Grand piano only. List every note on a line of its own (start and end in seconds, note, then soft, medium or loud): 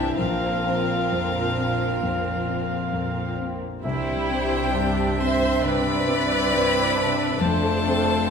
0.00 0.22 G2 soft
0.00 0.22 C4 soft
0.18 1.98 A#1 soft
0.65 1.39 C4 soft
1.12 1.84 F2 soft
1.57 2.29 C4 soft
2.03 2.75 F2 soft
2.47 3.20 C4 soft
2.93 3.66 F2 soft
3.40 3.85 C4 soft
3.85 5.60 C2 medium
4.29 5.01 C4 soft
4.74 5.46 G2 soft
5.19 5.90 C4 soft
5.63 6.35 G2 soft
6.08 6.79 C4 soft
6.53 7.24 G2 soft
6.97 7.41 C4 soft
7.41 8.30 F2 medium
7.86 8.30 C4 soft